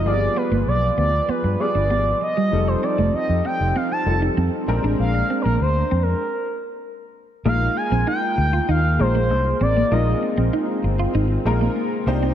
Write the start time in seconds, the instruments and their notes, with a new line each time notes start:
Already playing: analog synth pad F3 F4
0.05 fingered electric bass G1, grand piano G3 A#3 F4 G#4, analog synth pad G#4 B4, analog synth lead D5
0.12 grand piano B3
0.21 muted clean electric guitar stroke
0.36 clean electric guitar B3, analog synth lead B4
0.51 fingered electric bass G1, clean electric guitar A#3
0.67 fingered electric bass B1, analog synth lead D5
0.98 fingered electric bass D2, clean electric guitar B3, analog synth lead D5
1.28 clean electric guitar B3, analog synth lead B4, muted fingered electric bass stroke
1.44 fingered electric bass G2, muted clean electric guitar stroke
1.59 grand piano G3 B3 F4 G#4, analog synth lead D5
1.75 fingered electric bass G1, clean electric guitar D4
1.90 fingered electric bass G#1, clean electric guitar B3
2.21 analog synth lead D#5, muted clean electric guitar stroke
2.37 clean electric guitar G3
2.52 fingered electric bass F1, analog synth pad F3 C4 D#4 G4 A4, grand piano G3 D#4 F4 A4
2.68 analog synth lead C5, muted clean electric guitar stroke
2.83 clean electric guitar C4, analog synth lead D5
2.98 fingered electric bass F1, clean electric guitar A3
3.14 analog synth lead D#5, muted fingered electric bass stroke
3.29 fingered electric bass F2
3.45 clean electric guitar C4, analog synth lead G5
3.60 fingered electric bass F1
3.76 clean electric guitar C4, analog synth lead F5
3.92 analog synth lead A5, muted clean electric guitar stroke
4.06 fingered electric bass F1, grand piano G3 D#4 F4 A4
4.22 clean electric guitar D#4
4.37 fingered electric bass F2, clean electric guitar C4
4.68 fingered electric bass A#1, grand piano G#3 C4 D4 A#4, analog synth pad G#3 A#3 D4, muted clean electric guitar stroke
4.84 fingered electric bass A1, clean electric guitar D4
4.99 fingered electric bass A#1, analog synth lead F5
5.15 muted clean electric guitar stroke
5.30 clean electric guitar C4
5.41 fingered electric bass A#1, analog synth lead A#4
5.45 clean electric guitar A#3
5.60 fingered electric bass D2, analog synth lead C5
5.91 fingered electric bass F2, clean electric guitar C4
6.03 analog synth lead A#4
7.45 fingered electric bass A#1, grand piano G#3 A#3 D#4 F4 A#4, analog synth pad G#3 A#3 F4, clean electric guitar A#3, analog synth lead F5
7.77 analog synth lead G#5, muted clean electric guitar stroke
7.91 fingered electric bass A#1, clean electric guitar C4
8.07 clean electric guitar D#4, analog synth lead G5
8.38 fingered electric bass D2, muted clean electric guitar stroke
8.53 clean electric guitar F4
8.69 fingered electric bass D#2, clean electric guitar D#4, analog synth lead F5
8.99 fingered electric bass A#1, grand piano G#3 A#3 D#4 F4 A#4, analog synth lead C5, muted clean electric guitar stroke
9.15 clean electric guitar A#3
9.31 fingered electric bass C2, muted clean electric guitar stroke
9.61 fingered electric bass A1, clean electric guitar C4, analog synth lead D5
9.77 clean electric guitar A#3
9.91 fingered electric bass A#1, grand piano G#3 A#3 D#4 F4 A#4, clean electric guitar A#3, analog synth pad C4, analog synth lead D#5
10.23 muted clean electric guitar stroke
10.37 fingered electric bass A#1, clean electric guitar C4
10.53 clean electric guitar D#4
10.84 fingered electric bass G1, muted clean electric guitar stroke
10.99 clean electric guitar F4
11.14 fingered electric bass G#1, clean electric guitar D#4
11.45 fingered electric bass A#1, grand piano G#3 A#3 D#4 F4 A#4, muted clean electric guitar stroke
11.61 clean electric guitar A#3
11.76 muted clean electric guitar stroke
12.06 fingered electric bass C2, analog synth pad C3 G3 A#3 D5, grand piano A#3 D4 D#4 G4 C5, clean electric guitar C4
12.23 clean electric guitar C4